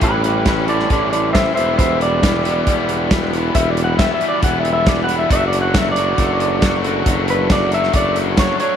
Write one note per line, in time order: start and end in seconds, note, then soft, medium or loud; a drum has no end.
0.00 0.86 A1 loud
0.00 0.46 A2 medium
0.00 0.48 E3 medium
0.00 0.48 G3 medium
0.00 0.47 C#4 loud
0.00 0.24 G4 medium
0.00 0.49 G4 medium
0.00 1.54 A4 medium
0.00 0.24 B4 medium
0.00 1.54 G5 medium
0.00 1.54 D6 medium
0.00 kick loud
0.00 closed hi-hat medium
0.05 0.47 E4 medium
0.24 0.46 G4 medium
0.24 0.47 B4 medium
0.24 closed hi-hat medium
0.45 0.67 A2 medium
0.45 0.69 E3 medium
0.45 0.69 G3 medium
0.45 0.69 C#4 medium
0.45 0.70 E4 medium
0.45 0.68 G4 medium
0.45 0.70 G4 medium
0.45 0.69 B4 medium
0.45 kick loud
0.45 snare medium
0.45 closed hi-hat medium
0.68 0.89 A2 medium
0.68 0.90 E3 medium
0.68 0.91 G3 medium
0.68 0.90 C#4 medium
0.68 0.92 E4 medium
0.68 0.91 G4 medium
0.68 0.89 A4 medium
0.68 0.90 D5 medium
0.68 closed hi-hat medium
0.79 snare soft
0.90 1.53 A1 medium
0.90 1.34 A2 medium
0.90 1.35 E3 loud
0.90 1.35 G3 medium
0.90 1.35 C#4 medium
0.90 1.36 E4 medium
0.90 1.36 G4 medium
0.90 1.11 A4 medium
0.90 1.11 D5 medium
0.90 kick loud
0.90 closed hi-hat medium
1.12 1.32 A4 medium
1.12 1.33 D5 medium
1.12 closed hi-hat medium
1.33 1.56 A2 medium
1.33 1.57 E3 medium
1.33 1.57 G3 medium
1.33 1.56 C#4 medium
1.33 1.58 E4 loud
1.33 1.58 G4 medium
1.33 1.54 C5 medium
1.33 1.54 E5 medium
1.33 kick loud
1.33 snare loud
1.33 closed hi-hat medium
1.55 2.63 E1 loud
1.55 1.79 E2 medium
1.55 1.79 B2 medium
1.55 1.80 E3 loud
1.55 1.80 G3 medium
1.55 1.80 B3 medium
1.55 1.80 E4 medium
1.55 5.28 G4 medium
1.55 1.81 G4 loud
1.55 1.76 C5 medium
1.55 8.76 D5 medium
1.55 1.77 E5 medium
1.55 5.27 E5 medium
1.55 closed hi-hat medium
1.77 2.23 E2 medium
1.77 2.22 B2 medium
1.77 2.24 E3 medium
1.77 2.24 G3 medium
1.77 2.24 B3 medium
1.77 2.25 E4 loud
1.77 2.25 G4 medium
1.77 1.99 C5 medium
1.77 2.00 E5 medium
1.77 kick loud
1.77 closed hi-hat medium
2.01 3.30 D5 medium
2.01 closed hi-hat medium
2.23 2.44 E2 medium
2.23 2.44 B2 medium
2.23 2.45 E3 medium
2.23 2.46 G3 medium
2.23 2.46 B3 medium
2.23 2.46 E4 medium
2.23 2.46 G4 medium
2.23 kick loud
2.23 snare loud
2.23 closed hi-hat loud
2.45 2.66 E2 medium
2.45 2.66 B2 medium
2.45 2.67 E3 medium
2.45 2.67 G3 medium
2.45 2.68 B3 medium
2.45 2.68 E4 medium
2.45 2.67 G4 medium
2.45 closed hi-hat medium
2.67 3.51 E1 medium
2.67 3.09 E2 medium
2.67 3.10 B2 loud
2.67 3.10 E3 medium
2.67 3.10 G3 loud
2.67 3.11 B3 medium
2.67 3.13 E4 loud
2.67 3.10 G4 medium
2.67 kick loud
2.67 closed hi-hat medium
2.89 closed hi-hat medium
3.10 3.32 E2 medium
3.10 3.32 B2 medium
3.10 3.33 E3 loud
3.10 3.33 G3 loud
3.10 3.33 B3 medium
3.10 3.34 E4 medium
3.10 3.34 G4 loud
3.10 kick loud
3.10 snare loud
3.10 closed hi-hat medium
3.33 3.52 E2 medium
3.33 3.53 B2 medium
3.33 3.54 E3 medium
3.33 3.53 G3 medium
3.33 3.54 B3 loud
3.33 3.56 E4 medium
3.33 3.54 G4 medium
3.33 closed hi-hat medium
3.54 4.13 E1 loud
3.54 3.97 E2 medium
3.54 3.97 B2 loud
3.54 3.98 E3 medium
3.54 3.98 G3 medium
3.54 3.98 B3 medium
3.54 4.00 E4 loud
3.54 3.99 G4 medium
3.54 3.70 E5 medium
3.54 kick loud
3.54 closed hi-hat loud
3.71 3.84 D5 medium
3.77 closed hi-hat medium
3.84 3.98 F#5 medium
3.98 4.19 E2 medium
3.98 4.20 B2 medium
3.98 4.20 E3 medium
3.98 4.20 G3 medium
3.98 4.21 B3 medium
3.98 4.21 E4 medium
3.98 4.21 G4 medium
3.98 4.13 E5 medium
3.98 kick loud
3.98 snare loud
3.98 closed hi-hat medium
4.14 4.28 E5 medium
4.21 4.42 E2 medium
4.21 4.42 B2 medium
4.21 4.42 E3 medium
4.21 4.42 G3 loud
4.21 4.43 B3 medium
4.21 4.43 E4 medium
4.21 4.43 G4 medium
4.21 closed hi-hat medium
4.28 4.43 D5 medium
4.42 5.27 E1 medium
4.42 4.85 E2 medium
4.42 4.85 B2 medium
4.42 4.86 E3 loud
4.42 4.87 G3 loud
4.42 4.87 B3 loud
4.42 4.87 E4 medium
4.42 4.87 G4 medium
4.42 4.59 F#5 medium
4.42 kick loud
4.42 closed hi-hat medium
4.59 4.72 E5 medium
4.65 closed hi-hat medium
4.73 4.89 E5 medium
4.86 5.08 E2 medium
4.86 5.07 B2 medium
4.86 5.08 E3 loud
4.86 5.08 G3 loud
4.86 5.09 B3 loud
4.86 5.09 E4 medium
4.86 5.09 G4 medium
4.86 5.02 D5 loud
4.86 kick loud
4.86 snare loud
4.86 closed hi-hat medium
5.04 5.17 F#5 loud
5.09 5.30 E2 medium
5.09 5.30 B2 medium
5.09 5.30 E3 medium
5.09 5.30 G3 medium
5.09 5.30 B3 medium
5.09 5.31 E4 medium
5.09 5.31 G4 medium
5.09 closed hi-hat medium
5.18 5.31 E5 medium
5.30 6.15 F#1 loud
5.30 5.75 F#3 medium
5.30 5.75 A3 medium
5.30 5.75 D4 medium
5.30 5.75 F#4 loud
5.30 8.76 A4 medium
5.30 5.46 E5 medium
5.30 8.76 F#5 medium
5.30 kick loud
5.30 closed hi-hat medium
5.48 5.61 D5 medium
5.53 closed hi-hat medium
5.62 5.78 F#5 medium
5.74 5.96 F#3 medium
5.74 5.97 A3 medium
5.74 5.97 D4 medium
5.74 5.98 F#4 medium
5.74 5.91 E5 medium
5.74 kick loud
5.74 snare loud
5.74 closed hi-hat loud
5.92 6.76 D5 medium
5.96 6.18 F#3 medium
5.96 6.19 A3 medium
5.96 6.19 D4 medium
5.96 6.19 F#4 medium
5.96 closed hi-hat medium
6.18 7.03 F#1 medium
6.18 6.62 F#3 medium
6.18 6.64 A3 loud
6.18 6.63 D4 medium
6.18 6.63 F#4 loud
6.18 kick medium
6.18 closed hi-hat medium
6.40 closed hi-hat medium
6.62 6.84 F#3 medium
6.62 6.85 A3 loud
6.62 6.85 D4 medium
6.62 6.85 F#4 loud
6.62 kick loud
6.62 snare loud
6.62 closed hi-hat loud
6.84 7.06 F#3 medium
6.84 7.06 A3 medium
6.84 7.07 D4 medium
6.84 7.07 F#4 medium
6.84 closed hi-hat medium
7.06 7.91 F#1 loud
7.06 7.50 F#3 medium
7.06 7.51 A3 medium
7.06 7.51 D4 loud
7.06 7.51 F#4 loud
7.06 kick loud
7.06 closed hi-hat loud
7.28 7.51 B4 medium
7.28 closed hi-hat medium
7.50 7.72 F#3 medium
7.50 7.72 A3 medium
7.50 7.73 D4 medium
7.50 7.73 F#4 loud
7.50 7.73 D5 medium
7.50 kick loud
7.50 snare loud
7.50 closed hi-hat medium
7.72 7.94 F#3 medium
7.72 7.95 A3 medium
7.72 7.95 D4 medium
7.72 7.95 F#4 loud
7.72 7.95 E5 medium
7.72 closed hi-hat medium
7.83 snare soft
7.93 8.53 F#1 medium
7.93 8.38 F#3 medium
7.93 8.38 A3 loud
7.93 8.39 D4 loud
7.93 8.39 F#4 loud
7.93 8.17 D5 medium
7.93 kick loud
7.93 closed hi-hat medium
8.16 closed hi-hat medium
8.37 8.60 F#3 medium
8.37 8.60 A3 loud
8.37 8.61 D4 medium
8.37 8.61 F#4 loud
8.37 8.59 C#5 loud
8.37 kick loud
8.37 snare loud
8.37 closed hi-hat medium
8.60 8.76 F#3 medium
8.60 8.76 A3 medium
8.60 8.76 D4 medium
8.60 8.76 F#4 loud
8.60 8.76 C#5 medium
8.60 closed hi-hat medium